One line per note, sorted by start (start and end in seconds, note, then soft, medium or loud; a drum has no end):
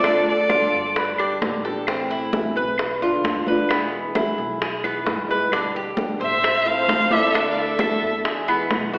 0.00 0.67 D2 medium
0.00 0.28 A4 medium
0.00 0.28 D5 medium
0.00 high bongo medium
0.04 0.50 D3 medium
0.04 0.50 A3 medium
0.04 0.49 D4 medium
0.04 0.50 D4 medium
0.04 0.51 F4 medium
0.04 high conga soft
0.04 claves medium
0.27 1.16 A4 medium
0.27 1.15 D5 medium
0.27 high bongo soft
0.27 high conga soft
0.49 0.96 D3 medium
0.49 0.96 A3 soft
0.49 0.96 D4 medium
0.49 0.95 F4 medium
0.49 0.96 F4 medium
0.49 high bongo soft
0.49 high conga medium
0.49 claves medium
0.73 1.38 G1 medium
0.73 high conga soft
0.96 1.18 B4 medium
0.96 muted nylon-string guitar stroke medium
0.96 high bongo medium
0.96 high conga soft
1.18 1.40 D3 soft
1.18 1.41 G3 medium
1.18 1.41 B3 medium
1.18 1.63 D4 medium
1.18 1.41 G4 medium
1.18 high bongo soft
1.18 high conga soft
1.18 claves medium
1.41 2.50 A1 medium
1.41 1.64 D3 soft
1.41 1.64 G3 soft
1.41 1.64 B3 soft
1.41 1.64 G4 medium
1.41 high bongo medium
1.41 low bongo medium
1.41 high conga medium
1.65 1.88 D3 medium
1.65 1.88 G3 medium
1.65 1.87 B3 medium
1.65 1.87 G4 medium
1.65 1.87 A4 medium
1.65 high bongo soft
1.65 high conga soft
1.87 2.32 E3 medium
1.87 2.33 A3 medium
1.87 2.10 C4 medium
1.87 2.33 C4 medium
1.87 2.33 E4 medium
1.87 high bongo medium
1.87 high conga soft
1.87 claves medium
2.10 2.55 E4 medium
2.10 high conga soft
2.33 2.78 E3 medium
2.33 2.79 A3 soft
2.33 2.79 C4 medium
2.33 2.79 E4 soft
2.33 high bongo soft
2.33 high conga medium
2.56 3.20 B1 loud
2.56 3.01 B4 medium
2.56 high conga soft
2.78 muted nylon-string guitar stroke medium
2.78 high bongo medium
2.78 high conga soft
2.78 claves medium
3.01 3.24 D3 medium
3.01 3.24 B3 medium
3.01 3.24 D4 medium
3.01 3.24 F4 medium
3.01 3.46 F4 medium
3.01 high conga soft
3.24 4.32 E2 medium
3.24 3.47 D3 soft
3.24 3.47 B3 soft
3.24 3.47 D4 soft
3.24 3.48 F4 medium
3.24 high bongo medium
3.24 low bongo medium
3.24 high conga medium
3.47 3.71 D3 soft
3.47 3.70 B3 medium
3.47 3.70 D4 medium
3.47 3.70 F4 medium
3.47 3.70 B4 medium
3.47 high conga medium
3.69 4.15 B2 medium
3.69 4.16 E3 medium
3.69 4.16 G#3 medium
3.69 4.15 B3 medium
3.69 4.16 B3 medium
3.69 high bongo medium
3.69 high conga soft
3.69 claves medium
3.73 4.16 E4 medium
3.93 high bongo soft
3.93 high conga soft
4.15 4.60 E3 soft
4.15 4.60 G#3 medium
4.15 4.60 B3 medium
4.15 4.60 E4 medium
4.15 4.61 E4 medium
4.15 high bongo medium
4.15 high conga medium
4.15 claves medium
4.38 5.03 B1 medium
4.38 high conga soft
4.61 4.84 G#4 medium
4.61 muted nylon-string guitar stroke medium
4.61 high bongo medium
4.61 high conga soft
4.84 5.04 E3 soft
4.84 5.05 G#3 soft
4.84 5.05 B3 medium
4.84 5.28 B3 medium
4.84 5.06 E4 medium
4.84 high bongo soft
4.84 high conga soft
4.84 claves medium
5.05 6.14 G1 medium
5.05 5.28 E3 soft
5.05 5.28 G#3 soft
5.05 5.28 B3 medium
5.05 5.27 E4 soft
5.05 high bongo medium
5.05 low bongo medium
5.05 high conga medium
5.28 5.51 E3 medium
5.28 5.51 G#3 medium
5.28 5.50 B3 medium
5.28 5.51 E4 medium
5.28 5.52 B4 medium
5.28 high bongo soft
5.28 high conga soft
5.50 5.96 B2 medium
5.50 5.95 D3 medium
5.50 5.95 G3 medium
5.50 5.97 B3 medium
5.50 5.75 D4 medium
5.50 5.97 G4 medium
5.50 high bongo medium
5.50 high conga soft
5.50 claves medium
5.75 6.20 G4 medium
5.75 high conga soft
5.96 6.42 D3 soft
5.96 6.42 G3 soft
5.96 6.42 B3 medium
5.96 6.43 G4 medium
5.96 high bongo soft
5.96 high conga medium
6.20 6.85 A1 medium
6.20 6.65 C5 medium
6.20 6.64 C5 medium
6.20 6.69 E5 medium
6.20 high conga soft
6.42 muted nylon-string guitar stroke soft
6.42 high bongo medium
6.42 high conga soft
6.42 claves medium
6.65 6.88 A3 soft
6.65 6.88 C4 medium
6.65 6.88 E4 medium
6.65 7.10 A4 medium
6.65 7.13 C5 medium
6.65 7.14 F5 loud
6.65 high conga soft
6.88 7.96 D2 medium
6.88 7.11 E3 soft
6.88 7.11 A3 soft
6.88 7.11 C4 soft
6.88 7.10 E4 soft
6.88 high bongo medium
6.88 low bongo medium
6.88 high conga medium
7.11 7.33 A3 medium
7.11 7.34 C4 medium
7.11 7.34 E4 medium
7.11 7.52 A4 medium
7.11 7.34 D5 medium
7.11 7.50 E5 loud
7.11 high conga medium
7.34 7.79 D3 medium
7.34 7.79 A3 medium
7.34 7.79 D4 medium
7.34 7.79 E4 medium
7.34 high bongo medium
7.34 high conga soft
7.34 claves medium
7.50 7.57 D5 soft
7.50 7.61 F5 medium
7.57 8.27 A4 medium
7.57 8.49 E5 medium
7.57 high bongo soft
7.57 high conga soft
7.79 8.25 D3 soft
7.79 8.25 A3 soft
7.79 8.25 D4 medium
7.79 8.25 E4 medium
7.79 8.24 A4 medium
7.79 high bongo soft
7.79 high conga medium
7.79 claves medium
8.02 8.67 E2 loud
8.02 high conga soft
8.25 8.47 G#4 medium
8.25 muted nylon-string guitar stroke medium
8.25 high bongo medium
8.25 high conga soft
8.48 8.70 E3 soft
8.48 8.70 G#3 medium
8.48 8.92 B3 medium
8.48 8.71 B3 medium
8.48 8.70 E4 medium
8.48 high bongo soft
8.48 high conga soft
8.48 claves medium
8.70 8.98 B1 medium
8.70 8.93 E3 soft
8.70 8.93 G#3 soft
8.70 8.93 B3 medium
8.70 8.92 E4 soft
8.70 high bongo medium
8.70 low bongo medium
8.70 high conga medium
8.93 8.98 E3 medium
8.93 8.98 G#3 medium
8.93 8.98 B3 medium
8.93 8.98 E4 medium
8.93 8.98 F#4 medium
8.93 high bongo soft
8.93 high conga soft